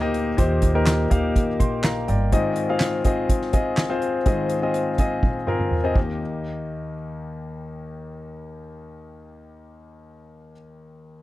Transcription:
Already playing: upright bass D2, grand piano A#2 G4 C5 D#5
0.00 grand piano A#3 D#4 G4 D#5
0.14 closed hi-hat
0.37 upright bass D#2, grand piano A#2 A#3 D#4 G4 C5, kick, closed hi-hat
0.62 kick, closed hi-hat
0.74 grand piano A#3 D#4 G4 A#4
0.86 snare, clap, closed hi-hat
1.10 upright bass D#2, grand piano A#3 D#4 G4 F5, kick, closed hi-hat
1.36 kick, closed hi-hat
1.60 upright bass A#1, grand piano G5 C6, kick, closed hi-hat
1.83 grand piano F5 A#5, snare, clap, closed hi-hat
2.08 upright bass G1, grand piano D5 G5, closed hi-hat
2.32 grand piano G#2 D#3 C4 F4 G#4 D#5, kick, closed hi-hat
2.56 closed hi-hat
2.69 grand piano C4 F4 G#4 F5
2.80 snare, clap, closed hi-hat
3.05 grand piano C4 F4 G#4 D#5, kick, closed hi-hat
3.29 kick, closed hi-hat
3.41 snare
3.53 grand piano C4 F4 G#4 D#5, kick, closed hi-hat
3.77 snare, clap, closed hi-hat
3.89 grand piano C4 F4 G#4 C5
4.02 closed hi-hat
4.26 grand piano G#2 D#3 C4 F4 G#4 D#5, kick, closed hi-hat
4.50 closed hi-hat
4.62 grand piano C4 F4 G#4 D#5
4.74 closed hi-hat
4.98 grand piano C4 F4 G#4 D#5, kick, closed hi-hat
5.23 kick, high tom
5.47 grand piano C4 F4 G#4 A#4, mid tom
5.59 mid tom
5.71 mid tom
5.84 grand piano C4 F4 G#4 D#5
5.94 grand piano D#2 A#3 D#4 G4, kick, crash
5.98 grand piano D#5

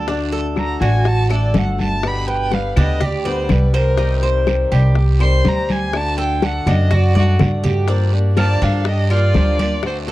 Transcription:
Already playing: upright bass D2
0.08 steel-string acoustic guitar D3 A3 D4 F#4, cuban tres D4, high bongo, high conga, long guiro
0.32 cuban tres A4, high bongo, high conga
0.57 steel-string acoustic guitar D3 A3 D4 F#4, violin A#5, high bongo, high conga, short guiro, claves
0.81 upright bass A1, steel-string acoustic guitar A3 D4 F#4, cuban tres F#4, violin G#5, short guiro
1.05 violin A5, muted steel-string acoustic guitar stroke, high bongo, high conga, long guiro
1.29 steel-string acoustic guitar A3 D4 F#4, cuban tres A4, violin D5, high bongo, high conga, claves
1.54 upright bass G1, steel-string acoustic guitar D3 A3 D4 F#4, violin F#5, high bongo, low bongo, high conga, short guiro
1.78 violin A5, high bongo, high conga, short guiro
2.03 steel-string acoustic guitar B2 D3 G3 B3 G4, violin B5, high bongo, high conga, long guiro, claves
2.27 cuban tres B4, violin G5, high bongo, high conga
2.51 steel-string acoustic guitar D3 G3 B3 G4, violin F5, high bongo, high conga, short guiro
2.76 upright bass D2, steel-string acoustic guitar D3 G3 B3 G4, cuban tres D4, violin D#5, high conga, low conga, short guiro, claves
3.00 cuban tres G4, muted steel-string acoustic guitar stroke, high bongo, high conga, low conga, long guiro
3.05 violin D5
3.25 steel-string acoustic guitar D3 G3 B3 G4, violin C5, cuban tres D5, high bongo, high conga
3.49 upright bass C2, steel-string acoustic guitar D3 G3 B3 G4, violin B4, high bongo, low bongo, high conga, short guiro, claves
3.73 violin A#4, cuban tres C5, high bongo, short guiro
3.97 steel-string acoustic guitar C3 D#3 G3 C4 G4, cuban tres D#4, high bongo, high conga, long guiro
4.22 cuban tres C5, high bongo, high conga
4.47 steel-string acoustic guitar D#3 G3 C4 G4, high bongo, high conga, short guiro, claves
4.71 upright bass C2, steel-string acoustic guitar D#3 G3 C4 G4, cuban tres G4, short guiro
4.95 muted steel-string acoustic guitar stroke, high bongo, high conga, long guiro
5.20 steel-string acoustic guitar D#3 G3 C4 G4, cuban tres C5, violin C6, high bongo, high conga, claves
5.45 upright bass D2, steel-string acoustic guitar G3 C4 G4, violin A#5, high bongo, low bongo, high conga, short guiro
5.69 violin G#5, high bongo, high conga, short guiro
5.93 steel-string acoustic guitar D3 A3 D4 F#4, violin A5, high bongo, high conga, long guiro, claves
6.18 cuban tres A4, violin G5, high bongo, high conga
6.41 steel-string acoustic guitar D3 A3 D4 F#4, violin F#5, high bongo, high conga, short guiro
6.66 upright bass F#2, steel-string acoustic guitar A3 D4 F#4, cuban tres D4, violin D#5, high conga, low conga, short guiro, claves
6.90 cuban tres F#4, muted steel-string acoustic guitar stroke, high bongo, high conga, low conga, long guiro
6.94 violin D5
7.14 steel-string acoustic guitar A3 D4 F#4, violin F#4, cuban tres D5, high bongo, high conga
7.40 upright bass G2, steel-string acoustic guitar D3 A3 D4 F#4, high bongo, low bongo, low conga, short guiro, claves
7.64 cuban tres G4, high bongo, low conga, short guiro
7.88 steel-string acoustic guitar D3 F3 A#3 D4 G4, cuban tres D4, high bongo, high conga, long guiro
8.13 steel-string acoustic guitar A#3 D4 G4, high bongo, high conga
8.37 steel-string acoustic guitar D3 F3 A#3 D4 G4, cuban tres F4, violin section D5, violin A5, high bongo, high conga, short guiro, claves
8.62 upright bass G2, cuban tres D4, violin section A4, violin F5, short guiro
8.85 violin section G4, violin D#5, muted steel-string acoustic guitar stroke, high bongo, high conga, long guiro
9.10 steel-string acoustic guitar A#3 D4 G4, cuban tres F4, violin section F4, violin D5, high bongo, high conga, claves
9.34 upright bass D2, steel-string acoustic guitar D3 F3 A#3 D4 G4, high bongo, low bongo, high conga, short guiro
9.58 steel-string acoustic guitar A#3 D4 G4, cuban tres D5, high bongo, high conga, short guiro
9.83 steel-string acoustic guitar D3 A3 C4 F#4, violin section F#4, violin C5, high bongo, high conga, long guiro, claves
10.07 steel-string acoustic guitar C4 F#4, cuban tres A4, high bongo, high conga

